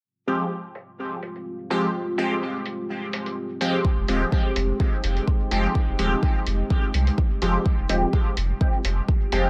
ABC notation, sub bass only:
X:1
M:4/4
L:1/16
Q:"Swing 16ths" 1/4=126
K:Fm
V:1 name="Sub bass" clef=bass
z16 | z16 | z F,,, E,,, z3 F,,, z3 F,,, z3 F,,, z | z F,,, E,,, z3 F,,, z3 C,, z3 F,,, z |
z F,,, E,,, z3 F,,, z3 F,,, z3 F,,, z |]